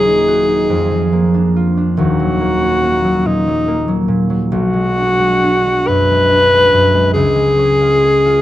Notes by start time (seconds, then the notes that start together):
Already playing: D#1 D#2 F#3 A#3 F#4 G#4
0.06 D#4
0.28 F#4
0.48 D#4
0.70 F2
0.91 F3
1.13 A#3
1.34 D4
1.56 F4
1.77 D4
1.97 D#1 D#2 F#4
2.20 F#3
2.41 A#3
2.63 C#4
2.83 A#3
3.04 F#3
3.26 A#2 D#4
3.47 F#3
3.68 A#3
3.88 F#3
4.08 A#2
4.30 F#3
4.52 B1 F#4
4.73 G#3
4.97 D4
5.19 G#3
5.43 D4
5.66 G#3
5.88 F#2 B4
6.10 G#3
6.31 D4
6.53 G#3
6.73 F#2
6.94 G#3
7.13 C#2 G#4
7.36 G#3
7.58 C#4
7.81 F4
8.04 G#4
8.26 F4